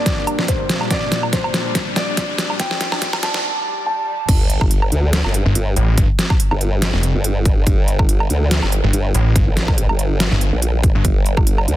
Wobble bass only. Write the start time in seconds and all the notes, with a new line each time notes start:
4.29 G1
4.92 D2
5.24 G1
5.55 G1
6.51 G1
7.15 G1
7.67 G1
8.30 D2
8.63 G1
8.93 G1
9.47 A1
9.89 G1
10.53 A#1
11.05 G1
11.68 D2